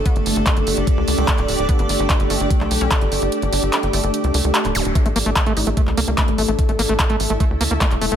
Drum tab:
HH |xxoxxxoxx-oxxxox|xxoxxxoxx-oxxxox|xxoxxxoxxxoxxxox|xxoxxxoxx-oxxxox|
CP |----x-------xx--|----x----x--x---|----x-------xx--|----x----x--x---|
BD |o---o---o---o---|o---o---o---o---|----------------|o---o---o---o---|

HH |xxoxxxoxx-oxxxox|
CP |----x-------xx--|
BD |o---o---o---o---|